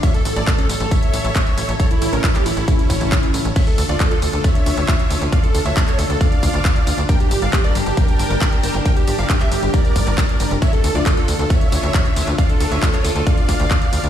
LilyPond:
<<
  \new Staff \with { instrumentName = "Digital synth lead" } { \time 4/4 \key d \minor \tempo 4 = 136 e''16 a'16 a'16 d''16 a'16 a'16 a'16 a'16 e''4.~ e''16 r16 | cis''16 e'16 e'16 bes'16 e'16 g'16 e'16 e'16 e'4.~ e'16 r16 | e''16 a'16 a'16 d''16 a'16 a'16 a'16 a'16 e''4.~ e''16 r16 | f''16 a'16 a'16 e''16 a'16 cis''16 a'16 a'16 f''4.~ f''16 r16 |
g''16 g'16 g'16 f''16 g'16 d''16 g'16 g'16 g''4.~ g''16 r16 | g''16 g'16 g'16 f''16 g'16 e''16 g'16 g'16 d''4.~ d''16 r16 | e''16 a'16 a'16 d''16 a'16 a'16 a'16 a'16 e''4.~ e''16 r16 | f''16 a'16 a'16 e''16 a'16 cis''16 a'16 a'16 f''4.~ f''16 r16 | }
  \new Staff \with { instrumentName = "Supersaw synth" } { \time 4/4 \key d \minor <cis'' e''>16 a'16 a'16 <a' d''>16 a'16 <cis' a'>16 a'16 a'16 <cis'' e''>4.~ <cis'' e''>16 r16 | <a' cis''>16 e'16 e'16 <cis' bes'>16 e'16 <e' g'>16 e'16 e'16 <cis' e'>4.~ <cis' e'>16 r16 | <cis'' e''>16 a'16 a'16 <f' d''>16 a'16 <f' a'>16 a'16 a'16 <cis'' e''>4.~ <cis'' e''>16 r16 | <d'' f''>16 a'16 a'16 <cis'' e''>16 a'16 <a' cis''>16 a'16 a'16 <d'' f''>4.~ <d'' f''>16 r16 |
<bes' g''>16 g'16 g'16 <d'' f''>16 g'16 <bes' d''>16 g'16 g'16 <bes' g''>4.~ <bes' g''>16 r16 | <bes' g''>16 g'16 g'16 <d'' f''>16 g'16 <g' e''>16 g'16 g'16 <bes' d''>4.~ <bes' d''>16 r16 | <cis'' e''>16 a'16 a'16 <f' d''>16 a'16 <f' a'>16 a'16 a'16 <cis'' e''>4.~ <cis'' e''>16 r16 | <d'' f''>16 a'16 a'16 <cis'' e''>16 a'16 <a' cis''>16 a'16 a'16 <d'' f''>4.~ <d'' f''>16 r16 | }
  \new Staff \with { instrumentName = "Analog synth pad" } { \time 4/4 \key d \minor << { a'1~ | a'1 | f'1~ | f'1 |
<g g' bes' a''>1~ | <g g' bes' a''>1 | d'1~ | d'1 | } \\ { cis''1~ | cis''1 | d'1~ | d'1~ |
d'1~ | d'1 | f'1~ | f'1 | } >> }
  \new Staff \with { instrumentName = "Analog synth bass" } { \clef bass \time 4/4 \key d \minor r8 a,,16 a,,16 r8 a,,16 a,,16 r8 a,,16 a,,16 r8 a,,16 a,,16 | r8 a,,16 a,,16 r8 a,,16 a,,16 r8 a,,16 a,,16 r8 a,,16 a,,16 | r8 d,16 d,16 r8 d,16 d,16 r8 d,16 d,16 r8 d,16 d,16 | r8 d,16 d,16 r8 d,16 d,16 r8 d,16 d,16 r8 d,16 d,16 |
r8 g,,16 g,,16 r8 g,,16 g,,16 r8 g,,16 g,,16 r8 g,,16 g,,16 | r8 g,,16 g,,16 r8 g,,16 g,,16 r8 g,,16 g,,16 r8 g,,16 f,,16 | r8 d,16 d,16 r8 d,16 d,16 r8 d,16 d,16 r8 d,16 d,16 | r8 d,16 d,16 r8 d,16 d,16 r8 d,16 d,16 r8 d,16 d,16 | }
  \new DrumStaff \with { instrumentName = "Drums" } \drummode { \time 4/4 <hh bd cymr tamb>16 <hh tamb>16 <hho cymr tamb>16 <hh tamb>16 <hc hh bd cymr tamb>16 <hh tamb>16 <hho cymr tamb>16 <hh tamb>16 <hh bd cymr tamb>16 <hh tamb>16 <hho cymr tamb>16 <hh tamb>16 <hc hh bd cymr tamb>16 <hh tamb>16 <hho cymr tamb>16 <hh tamb>16 | <hh bd cymr tamb>16 <hh tamb>16 <hho cymr tamb>16 <hh tamb>16 <hc hh bd cymr tamb>16 <hc hh tamb>16 <hho cymr tamb>16 <hh tamb>16 <hh bd cymr tamb>16 <hh tamb>16 <hho bd cymr tamb>16 <hh tamb>16 <hc hh bd cymr tamb>16 <hh tamb>16 <hho cymr tamb>16 <hh tamb>16 | <cymc hh bd cymr tamb>16 <hh tamb>16 <hho cymr tamb>16 hh16 <hc hh bd cymr tamb>16 <hh tamb>16 <hho cymr tamb>16 <hh tamb>16 <hh bd cymr tamb>16 <hh tamb>16 <hho cymr tamb>16 <hh tamb>16 <hc hh bd cymr tamb>16 <hh tamb>16 <hho cymr tamb>16 <hh tamb>16 | <hh bd cymr tamb>16 <hh tamb>16 <hho cymr tamb>16 <hh tamb>16 <hc hh bd cymr tamb>16 <hc hh tamb>16 <hho cymr tamb>16 <hh tamb>16 <hh bd cymr tamb>16 <hh tamb>16 <hho bd cymr tamb>16 <hh tamb>16 <hc hh bd cymr tamb>16 <hh tamb>16 <hho cymr tamb>16 <hh tamb>16 |
<hh bd cymr tamb>16 <hh tamb>16 <hho cymr tamb>16 <hh tamb>16 <hc hh bd cymr tamb>16 <hh tamb>16 <hho cymr tamb>16 <hh tamb>16 <hh bd cymr tamb>16 <hh tamb>16 <hho cymr tamb>16 <hh tamb>16 <hc hh bd cymr tamb>16 <hh tamb>16 <hho cymr tamb>16 <hh tamb>16 | <hh bd cymr tamb>16 <hh tamb>16 <hho cymr tamb>16 <hh tamb>16 <hc hh bd cymr tamb>16 <hc hh tamb>16 <hho cymr tamb>16 <hh tamb>16 <hh bd cymr tamb>16 <hh tamb>16 <hho bd cymr tamb>16 <hh tamb>16 <hc hh bd cymr tamb>16 <hh tamb>16 <hho cymr tamb>16 <hh tamb>16 | <hh bd cymr tamb>16 <hh tamb>16 <hho cymr tamb>16 <hh tamb>16 <hc hh bd cymr tamb>16 <hh tamb>16 <hho cymr tamb>16 <hh tamb>16 <hh bd cymr tamb>16 <hh tamb>16 <hho cymr tamb>16 <hh tamb>16 <hc hh bd cymr tamb>16 <hh tamb>16 <hho cymr tamb>16 <hh tamb>16 | <hh bd cymr tamb>16 <hh tamb>16 <hho cymr tamb>16 <hh tamb>16 <hc hh bd cymr tamb>16 <hc hh>16 <hho cymr tamb>16 <hh tamb>16 <hh bd cymr tamb>16 <hh tamb>16 <hho bd cymr tamb>16 <hh tamb>16 <hc hh bd cymr tamb>16 <hh tamb>16 <hho cymr tamb>16 <hh tamb>16 | }
>>